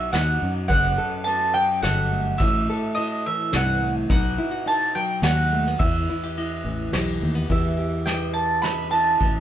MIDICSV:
0, 0, Header, 1, 5, 480
1, 0, Start_track
1, 0, Key_signature, 1, "minor"
1, 0, Tempo, 567108
1, 592, Time_signature, 3, 2, 24, 8
1, 7957, End_track
2, 0, Start_track
2, 0, Title_t, "Mandolin"
2, 0, Program_c, 0, 25
2, 0, Note_on_c, 0, 76, 86
2, 103, Note_off_c, 0, 76, 0
2, 106, Note_on_c, 0, 78, 85
2, 444, Note_off_c, 0, 78, 0
2, 577, Note_on_c, 0, 78, 94
2, 1047, Note_off_c, 0, 78, 0
2, 1050, Note_on_c, 0, 81, 87
2, 1283, Note_off_c, 0, 81, 0
2, 1302, Note_on_c, 0, 79, 89
2, 1541, Note_off_c, 0, 79, 0
2, 1545, Note_on_c, 0, 78, 90
2, 2015, Note_on_c, 0, 76, 92
2, 2042, Note_off_c, 0, 78, 0
2, 2468, Note_off_c, 0, 76, 0
2, 2494, Note_on_c, 0, 75, 85
2, 2749, Note_off_c, 0, 75, 0
2, 2762, Note_on_c, 0, 76, 84
2, 3003, Note_off_c, 0, 76, 0
2, 3013, Note_on_c, 0, 78, 89
2, 3336, Note_off_c, 0, 78, 0
2, 3475, Note_on_c, 0, 78, 96
2, 3952, Note_off_c, 0, 78, 0
2, 3956, Note_on_c, 0, 81, 89
2, 4187, Note_off_c, 0, 81, 0
2, 4190, Note_on_c, 0, 79, 92
2, 4431, Note_off_c, 0, 79, 0
2, 4434, Note_on_c, 0, 78, 88
2, 4902, Note_on_c, 0, 76, 76
2, 4926, Note_off_c, 0, 78, 0
2, 6072, Note_off_c, 0, 76, 0
2, 6359, Note_on_c, 0, 76, 70
2, 6802, Note_off_c, 0, 76, 0
2, 6817, Note_on_c, 0, 79, 72
2, 7050, Note_off_c, 0, 79, 0
2, 7054, Note_on_c, 0, 81, 80
2, 7292, Note_off_c, 0, 81, 0
2, 7295, Note_on_c, 0, 83, 89
2, 7536, Note_off_c, 0, 83, 0
2, 7540, Note_on_c, 0, 81, 89
2, 7957, Note_off_c, 0, 81, 0
2, 7957, End_track
3, 0, Start_track
3, 0, Title_t, "Nylon-string guitar"
3, 0, Program_c, 1, 24
3, 0, Note_on_c, 1, 47, 76
3, 0, Note_on_c, 1, 63, 65
3, 0, Note_on_c, 1, 66, 69
3, 105, Note_off_c, 1, 63, 0
3, 115, Note_on_c, 1, 63, 62
3, 356, Note_on_c, 1, 54, 62
3, 559, Note_off_c, 1, 66, 0
3, 564, Note_off_c, 1, 63, 0
3, 565, Note_off_c, 1, 54, 0
3, 574, Note_on_c, 1, 42, 82
3, 583, Note_on_c, 1, 59, 66
3, 592, Note_off_c, 1, 47, 0
3, 829, Note_on_c, 1, 69, 69
3, 1067, Note_off_c, 1, 59, 0
3, 1077, Note_on_c, 1, 59, 61
3, 1309, Note_on_c, 1, 54, 67
3, 1539, Note_off_c, 1, 69, 0
3, 1549, Note_on_c, 1, 69, 68
3, 1792, Note_on_c, 1, 57, 62
3, 1993, Note_off_c, 1, 42, 0
3, 2001, Note_off_c, 1, 54, 0
3, 2001, Note_off_c, 1, 69, 0
3, 2032, Note_on_c, 1, 45, 79
3, 2033, Note_off_c, 1, 59, 0
3, 2045, Note_on_c, 1, 64, 69
3, 2283, Note_on_c, 1, 69, 70
3, 2511, Note_off_c, 1, 64, 0
3, 2521, Note_on_c, 1, 64, 64
3, 2766, Note_on_c, 1, 52, 69
3, 2990, Note_off_c, 1, 45, 0
3, 2999, Note_on_c, 1, 43, 71
3, 3228, Note_off_c, 1, 43, 0
3, 3231, Note_on_c, 1, 45, 70
3, 3446, Note_off_c, 1, 64, 0
3, 3447, Note_off_c, 1, 69, 0
3, 3463, Note_on_c, 1, 47, 83
3, 3468, Note_on_c, 1, 63, 72
3, 3470, Note_off_c, 1, 45, 0
3, 3470, Note_off_c, 1, 57, 0
3, 3477, Note_off_c, 1, 52, 0
3, 3710, Note_on_c, 1, 64, 74
3, 3818, Note_off_c, 1, 64, 0
3, 3818, Note_on_c, 1, 66, 58
3, 3936, Note_off_c, 1, 63, 0
3, 3946, Note_on_c, 1, 63, 66
3, 4193, Note_on_c, 1, 54, 69
3, 4423, Note_off_c, 1, 66, 0
3, 4440, Note_on_c, 1, 66, 68
3, 4676, Note_on_c, 1, 57, 66
3, 4805, Note_off_c, 1, 57, 0
3, 4805, Note_on_c, 1, 59, 49
3, 4878, Note_off_c, 1, 63, 0
3, 4882, Note_off_c, 1, 54, 0
3, 4885, Note_off_c, 1, 66, 0
3, 4906, Note_off_c, 1, 47, 0
3, 4917, Note_off_c, 1, 59, 0
3, 4924, Note_on_c, 1, 40, 81
3, 4930, Note_on_c, 1, 64, 68
3, 5149, Note_off_c, 1, 64, 0
3, 5160, Note_on_c, 1, 64, 69
3, 5277, Note_off_c, 1, 64, 0
3, 5277, Note_on_c, 1, 67, 55
3, 5400, Note_on_c, 1, 64, 59
3, 5624, Note_on_c, 1, 52, 65
3, 5860, Note_off_c, 1, 67, 0
3, 5870, Note_on_c, 1, 67, 63
3, 6115, Note_on_c, 1, 57, 59
3, 6221, Note_off_c, 1, 57, 0
3, 6221, Note_on_c, 1, 59, 47
3, 6322, Note_off_c, 1, 67, 0
3, 6327, Note_off_c, 1, 40, 0
3, 6327, Note_off_c, 1, 64, 0
3, 6337, Note_off_c, 1, 52, 0
3, 6337, Note_on_c, 1, 40, 66
3, 6346, Note_off_c, 1, 59, 0
3, 6347, Note_on_c, 1, 52, 55
3, 6356, Note_on_c, 1, 59, 54
3, 6360, Note_on_c, 1, 64, 53
3, 6363, Note_on_c, 1, 67, 58
3, 6576, Note_off_c, 1, 67, 0
3, 6586, Note_on_c, 1, 67, 58
3, 6814, Note_off_c, 1, 59, 0
3, 6824, Note_on_c, 1, 59, 52
3, 7549, Note_off_c, 1, 64, 0
3, 7553, Note_on_c, 1, 64, 52
3, 7761, Note_off_c, 1, 59, 0
3, 7762, Note_off_c, 1, 67, 0
3, 7780, Note_off_c, 1, 40, 0
3, 7783, Note_on_c, 1, 45, 69
3, 7957, Note_off_c, 1, 45, 0
3, 7957, Note_off_c, 1, 52, 0
3, 7957, Note_off_c, 1, 64, 0
3, 7957, End_track
4, 0, Start_track
4, 0, Title_t, "Fingered electric bass"
4, 0, Program_c, 2, 33
4, 0, Note_on_c, 2, 35, 95
4, 88, Note_off_c, 2, 35, 0
4, 109, Note_on_c, 2, 39, 84
4, 327, Note_off_c, 2, 39, 0
4, 356, Note_on_c, 2, 42, 85
4, 570, Note_off_c, 2, 42, 0
4, 594, Note_on_c, 2, 30, 103
4, 821, Note_off_c, 2, 30, 0
4, 1547, Note_on_c, 2, 31, 105
4, 2005, Note_off_c, 2, 31, 0
4, 2032, Note_on_c, 2, 33, 116
4, 2259, Note_off_c, 2, 33, 0
4, 2991, Note_on_c, 2, 36, 98
4, 3446, Note_off_c, 2, 36, 0
4, 3468, Note_on_c, 2, 35, 107
4, 3696, Note_off_c, 2, 35, 0
4, 4419, Note_on_c, 2, 39, 104
4, 4880, Note_off_c, 2, 39, 0
4, 4907, Note_on_c, 2, 40, 109
4, 5136, Note_off_c, 2, 40, 0
4, 5624, Note_on_c, 2, 33, 87
4, 5843, Note_off_c, 2, 33, 0
4, 5869, Note_on_c, 2, 35, 86
4, 6085, Note_off_c, 2, 35, 0
4, 6113, Note_on_c, 2, 39, 83
4, 6328, Note_off_c, 2, 39, 0
4, 6345, Note_on_c, 2, 40, 83
4, 7276, Note_off_c, 2, 40, 0
4, 7792, Note_on_c, 2, 33, 81
4, 7957, Note_off_c, 2, 33, 0
4, 7957, End_track
5, 0, Start_track
5, 0, Title_t, "Drums"
5, 115, Note_on_c, 9, 38, 71
5, 115, Note_on_c, 9, 51, 53
5, 199, Note_off_c, 9, 38, 0
5, 199, Note_off_c, 9, 51, 0
5, 591, Note_on_c, 9, 36, 97
5, 591, Note_on_c, 9, 51, 55
5, 675, Note_off_c, 9, 36, 0
5, 676, Note_off_c, 9, 51, 0
5, 1074, Note_on_c, 9, 51, 57
5, 1159, Note_off_c, 9, 51, 0
5, 1552, Note_on_c, 9, 38, 70
5, 1552, Note_on_c, 9, 51, 56
5, 1637, Note_off_c, 9, 38, 0
5, 1637, Note_off_c, 9, 51, 0
5, 2027, Note_on_c, 9, 51, 59
5, 2032, Note_on_c, 9, 36, 98
5, 2111, Note_off_c, 9, 51, 0
5, 2117, Note_off_c, 9, 36, 0
5, 2508, Note_on_c, 9, 51, 53
5, 2593, Note_off_c, 9, 51, 0
5, 2987, Note_on_c, 9, 38, 73
5, 2987, Note_on_c, 9, 51, 51
5, 3072, Note_off_c, 9, 38, 0
5, 3072, Note_off_c, 9, 51, 0
5, 3466, Note_on_c, 9, 51, 55
5, 3469, Note_on_c, 9, 36, 101
5, 3551, Note_off_c, 9, 51, 0
5, 3554, Note_off_c, 9, 36, 0
5, 3953, Note_on_c, 9, 51, 52
5, 4037, Note_off_c, 9, 51, 0
5, 4426, Note_on_c, 9, 38, 73
5, 4426, Note_on_c, 9, 51, 58
5, 4511, Note_off_c, 9, 38, 0
5, 4511, Note_off_c, 9, 51, 0
5, 4908, Note_on_c, 9, 36, 99
5, 4909, Note_on_c, 9, 51, 58
5, 4993, Note_off_c, 9, 36, 0
5, 4994, Note_off_c, 9, 51, 0
5, 5393, Note_on_c, 9, 51, 55
5, 5478, Note_off_c, 9, 51, 0
5, 5867, Note_on_c, 9, 38, 71
5, 5867, Note_on_c, 9, 51, 58
5, 5951, Note_off_c, 9, 38, 0
5, 5951, Note_off_c, 9, 51, 0
5, 6345, Note_on_c, 9, 51, 46
5, 6347, Note_on_c, 9, 36, 82
5, 6430, Note_off_c, 9, 51, 0
5, 6432, Note_off_c, 9, 36, 0
5, 6826, Note_on_c, 9, 38, 64
5, 6826, Note_on_c, 9, 51, 46
5, 6911, Note_off_c, 9, 38, 0
5, 6911, Note_off_c, 9, 51, 0
5, 7308, Note_on_c, 9, 38, 64
5, 7308, Note_on_c, 9, 51, 48
5, 7393, Note_off_c, 9, 38, 0
5, 7393, Note_off_c, 9, 51, 0
5, 7553, Note_on_c, 9, 51, 45
5, 7637, Note_off_c, 9, 51, 0
5, 7793, Note_on_c, 9, 36, 85
5, 7793, Note_on_c, 9, 51, 46
5, 7877, Note_off_c, 9, 36, 0
5, 7878, Note_off_c, 9, 51, 0
5, 7957, End_track
0, 0, End_of_file